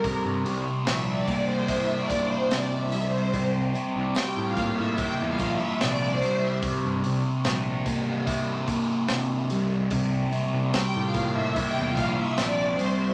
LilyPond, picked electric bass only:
\new Staff \with { instrumentName = "Picked electric bass" } { \clef bass \time 4/4 \key c \mixolydian \tempo 4 = 73 r16 g,16 c,16 r16 bes,,8 r2 r8 | c,8 r16 c,16 r16 a,8 a,16 r16 e,16 bes,,16 r16 bes,,8 r8 | r16 g,16 c,16 r16 bes,,8 r2 r8 | c,8 r16 c,16 r16 a,8 a,16 r16 e,16 bes,,16 r16 bes,,8 r8 | }